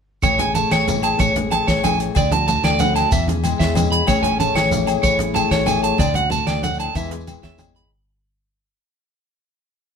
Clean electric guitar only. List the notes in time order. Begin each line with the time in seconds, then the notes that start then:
0.23 C#5
0.39 G#5
0.55 A5
0.72 C#5
1.04 A5
1.20 C#5
1.52 A5
1.67 C#5
1.84 G#5
2.17 D5
2.32 A5
2.48 A5
2.64 D5
2.80 F#5
2.96 A5
3.12 E5
3.59 E5
3.92 B5
4.08 C#5
4.23 G#5
4.40 A5
4.55 C#5
4.88 muted clean electric guitar stroke
5.03 C#5
5.35 A5
5.51 C#5
5.67 G#5
5.83 A5
5.99 D5
6.15 F#5
6.31 A5
6.47 D5
6.63 F#5
6.80 A5
6.96 E5
7.44 E5
7.76 B5